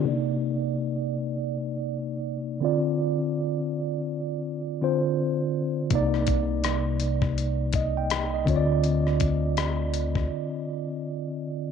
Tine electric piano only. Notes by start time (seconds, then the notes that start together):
0.04 C3 A#3 D4
0.08 D5
0.13 D#4
2.60 D3 C4 F4
2.65 D5
4.81 D3 C4 F4 C5
5.90 C3 A#3 D#4
5.95 D5
7.75 D#5
7.97 G5
8.34 D#5
8.45 D3 C4 F4
8.50 C#5
8.56 D5